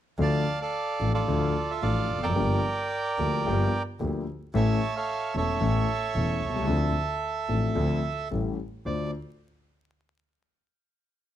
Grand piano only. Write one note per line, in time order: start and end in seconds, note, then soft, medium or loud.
0.18 0.42 D2 medium
0.18 0.42 D3 medium
0.18 0.42 F3 medium
0.18 0.42 A3 medium
0.18 0.42 D4 medium
0.18 0.42 A4 medium
0.99 1.24 A1 soft
0.99 1.24 A2 soft
0.99 1.23 F3 soft
0.99 1.24 A3 soft
0.99 1.24 D4 soft
0.99 1.24 A4 soft
1.28 1.51 D2 medium
1.28 1.51 D3 medium
1.28 1.51 F3 medium
1.28 1.51 A3 medium
1.28 1.51 D4 medium
1.28 1.51 A4 medium
1.82 2.06 A1 soft
1.82 2.06 A2 soft
1.82 2.05 F3 soft
1.82 2.06 A3 soft
1.82 2.06 D4 soft
1.82 2.06 A4 soft
2.17 2.24 E2 soft
2.23 2.30 F2 medium
2.30 2.37 F#2 medium
2.36 2.60 G1 medium
2.36 2.60 G2 medium
2.36 2.60 F3 medium
2.36 2.59 A#3 medium
2.36 2.59 D4 medium
2.36 2.60 G4 medium
3.18 3.42 D2 soft
3.18 3.42 D3 soft
3.18 3.42 F3 soft
3.18 3.42 A#3 soft
3.18 3.42 D4 soft
3.18 3.42 G4 soft
3.46 3.69 G1 medium
3.46 3.69 G2 medium
3.46 3.69 F3 medium
3.46 3.69 A#3 medium
3.46 3.69 D4 medium
3.46 3.69 G4 medium
4.00 4.23 D2 medium
4.00 4.23 D3 soft
4.00 4.23 F3 soft
4.00 4.23 A#3 soft
4.00 4.23 D4 soft
4.00 4.23 G4 soft
4.54 4.77 A1 medium
4.54 4.77 A2 medium
4.54 4.77 E3 medium
4.54 4.77 A3 medium
4.54 4.77 C#4 medium
4.54 4.77 A4 medium
5.34 5.57 E1 soft
5.34 5.57 E2 soft
5.34 5.57 E3 soft
5.34 5.57 A3 soft
5.34 5.57 C#4 soft
5.34 5.57 A4 soft
5.60 5.83 A1 medium
5.60 5.84 A2 medium
5.60 5.84 E3 medium
5.60 5.84 A3 medium
5.60 5.84 C#4 medium
5.60 5.84 A4 medium
6.15 6.38 E1 soft
6.15 6.37 E2 soft
6.15 6.37 E3 soft
6.15 6.38 A3 soft
6.15 6.38 C#4 soft
6.15 6.38 A4 soft
6.49 6.55 B1 soft
6.55 6.62 C2 medium
6.62 6.69 C#2 medium
6.67 6.91 D2 medium
6.67 6.91 D3 medium
6.67 6.90 F3 medium
6.67 6.91 C4 medium
6.67 6.91 D4 medium
6.67 6.91 A4 medium
7.49 7.72 A1 soft
7.49 7.72 A2 soft
7.49 7.72 F3 soft
7.49 7.72 C4 soft
7.49 7.72 D4 soft
7.49 7.72 A4 soft
7.75 7.99 D2 medium
7.75 7.99 D3 medium
7.75 7.99 F3 medium
7.75 7.99 C4 medium
7.75 7.99 D4 medium
7.75 7.99 A4 medium
8.31 8.54 A1 soft
8.31 8.54 A2 soft
8.31 8.54 G3 soft
8.31 8.54 C#4 soft
8.31 8.54 E4 soft
8.31 8.54 A4 soft
8.86 9.08 D2 soft
8.86 9.09 D4 soft
8.86 9.09 F4 soft
8.86 9.08 C5 medium